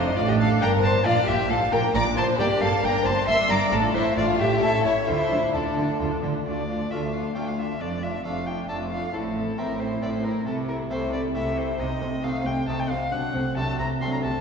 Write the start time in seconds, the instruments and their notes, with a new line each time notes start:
Already playing: double bass section F1, harpsichord F2 A3 D4 F4, cello section F2, viola section D4, violin section D#4 D#5, violin C5
0.17 double bass section A1, cello section A2, harpsichord A2, viola section D4, violin section F4 F5, violin D5
0.27 violin section G4 G5, violin D#5
0.39 violin section A4 A5, violin F5
0.61 double bass section G1, cello section G2, harpsichord G2, violin section A#4 A#5, violin G5
0.83 violin section C5 C6, violin A5
1.02 double bass section A#1, cello section A#2, harpsichord A#3 D4 F4, viola section F4, violin D5
1.06 harpsichord A#2, violin section F4 F5
1.17 viola section D4
1.27 double bass section A#1, cello section A#2, harpsichord A#2, viola section F4, violin section G4 G5, violin E5
1.39 viola section D4
1.50 double bass section A#1, cello section A#2, harpsichord A#2, viola section F4, violin section A4 A5, violin F5
1.62 viola section D4
1.72 double bass section A#1, cello section A#2, harpsichord A#2, viola section F4, violin section A#4 A#5, violin G5
1.84 viola section D4
1.94 double bass section A#1, cello section A#2, harpsichord A#2, viola section F4, violin section D5 D6, violin A#5
2.06 viola section D4
2.17 double bass section A#1, cello section A#2, harpsichord A#2, viola section F4, violin section C5 C6, violin A5
2.28 viola section D4
2.35 double bass section G1, cello section G2, harpsichord A#3 D4 A#4, viola section A#3
2.39 harpsichord G2, violin section G4 G5, violin D5
2.50 viola section D4
2.61 double bass section G1, cello section G2, harpsichord G2, viola section A#3, violin section A4 A5, violin F5
2.72 viola section D4
2.83 double bass section G1, harpsichord G2, cello section G2, viola section A#3, violin section A#4 A#5, violin G5
2.95 viola section D4
3.06 double bass section G1, harpsichord G2, cello section G2, viola section A#3, violin section C5 C6, violin A5
3.17 viola section D4
3.27 double bass section G1, harpsichord G2, cello section G2, viola section A#3, violin section E5 E6, violin C6
3.39 viola section D4
3.50 double bass section G1, harpsichord G2, cello section G2, viola section A#3, violin section D5 D6, violin A#5
3.61 viola section D4
3.68 harpsichord A3 D4 F4, violin section D4
3.72 double bass section A1, harpsichord A2, cello section A2, viola section D4, violin A4, violin section D5
3.84 viola section F4
3.94 double bass section A1, harpsichord A2, cello section A2, viola section D4, violin section E4 E5, violin C5
4.06 viola section F4
4.16 double bass section A1, cello section A2, harpsichord A2, viola section D4, violin section F4 F5, violin D5
4.28 viola section F4
4.39 double bass section A1, harpsichord A2, cello section A2, viola section D4, violin section G4 G5, violin E5
4.51 viola section F4
4.57 harpsichord A3 C#4 E4
4.62 double bass section A1, harpsichord A2, cello section A2, viola section E4, violin section A4 A5, violin E5
4.74 viola section C#4
4.85 double bass section A1, harpsichord A2, cello section A2, violin section E4 E5, viola section E4, violin C#5
4.97 viola section C#4
5.04 harpsichord A3 D4 F4
5.08 double bass section D2, cello section D3, harpsichord D3, violin section E4 E5, viola section F4, violin C5
5.20 viola section D4
5.31 double bass section D2, cello section D3, harpsichord D3, viola section F4
5.43 viola section D4
5.54 double bass section D2, harpsichord D3, cello section D3, violin section D4 D5, viola section F4, violin A4
5.67 viola section D4
5.78 double bass section D2, cello section D3, harpsichord D3, viola section F4
5.90 viola section D4
6.00 double bass section D2, harpsichord D3, cello section D3, viola section F4
6.13 viola section D4
6.23 double bass section D2, cello section D3, harpsichord D3, viola section F4
6.35 viola section D4
6.46 double bass section D2, cello section D2, harpsichord D2, viola section D4, violin section F4 A4, violin D5
6.69 viola section D4, violin section F4 A4
6.91 double bass section D2, cello section D2, harpsichord D2 A3 D4 F4, viola section D4, violin section F4 A4, violin E5
7.13 viola section D4, violin section F4 A4, violin F5
7.35 double bass section D2, harpsichord D2 A3 D4 F4, cello section D2, viola section D4, violin section F4 A4, violin G5
7.48 violin F5
7.58 viola section D4, violin section F4 A4, violin E5
7.79 double bass section F1, harpsichord F2, cello section F2, viola section D4, violin section F4 A4, violin D5
8.02 viola section D4, violin section F4 A4, violin E5
8.24 double bass section F1, cello section F2, harpsichord F2 A3 D4 A4, viola section D4, violin section F4 A4, violin F5
8.47 viola section D4, violin section F4 A4, violin G5
8.68 double bass section F1, harpsichord F2 A3 D4 A4, cello section F2, viola section D4, violin section F4 A4, violin A5
8.91 viola section D4, violin section F4 A4, violin F5
9.13 double bass section A1, harpsichord A2, cello section A2, viola section C4, violin section E4 A4, violin A4
9.36 viola section C4, violin section E4 A4
9.58 double bass section A1, harpsichord A2 C4 E4 A4, cello section A2, viola section C4, violin section E4 A4, violin A#4
9.80 viola section C4, violin section E4 A4, violin C5
10.02 double bass section A1, cello section A2, harpsichord A2 C4 E4 A4, viola section C4, violin section E4 A4, violin D5
10.13 violin C5
10.24 viola section C4, violin section E4 A4, violin A#4
10.46 double bass section C2, harpsichord C3, cello section C3, viola section A3, violin section E4 A4, violin A4
10.69 viola section A3, violin section E4 A4, violin A#4
10.90 double bass section C2, harpsichord C3 A3 E4 A4, cello section C3, viola section A3, violin section E4 A4, violin C5
11.13 viola section A3, violin section E4 A4, violin D5
11.35 double bass section C2, cello section C3, harpsichord C3 A3 E4 A4, viola section A3, violin section E4 A4, violin E5
11.57 viola section A3, violin section E4 A4, violin C5
11.79 double bass section C2, cello section C3, harpsichord C3, viola section C4, violin section D#4 C5, violin D#5
12.01 double bass section C2, cello section C3, harpsichord C3, viola section A3, violin section C4 A4
12.23 double bass section C2, cello section C3, harpsichord C3 A3 D#4 A4, viola section C4, violin section D#4 C5, violin F5
12.46 double bass section C2, cello section C3, harpsichord C3, viola section A3, violin section C4 A4, violin G5
12.68 double bass section C2, cello section C3, harpsichord C3 A3 D#4 A4, viola section C4, violin section D#4 C5, violin A5
12.80 violin G5
12.90 double bass section C2, harpsichord C3, cello section C3, viola section A3, violin section C4 A4, violin F5
13.12 double bass section C2, cello section C3, harpsichord C3, viola section F#3, violin section D4 F#4, violin F#5
13.34 double bass section C2, harpsichord C3, cello section C3, viola section A3, violin section C4 A4
13.56 double bass section C2, harpsichord C3 A3 D4 A4, cello section C3, viola section F#3, violin section D4 F#4, violin A5
13.79 double bass section C2, harpsichord C3, cello section C3, viola section A3, violin section C4 A4, violin A#5
14.01 double bass section C2, cello section C3, harpsichord C3 A3 D4 A4, viola section F#3, violin section D4 F#4, violin C6
14.13 violin A#5
14.23 double bass section C2, harpsichord C3, cello section C3, viola section A3, violin section C4 A4, violin A5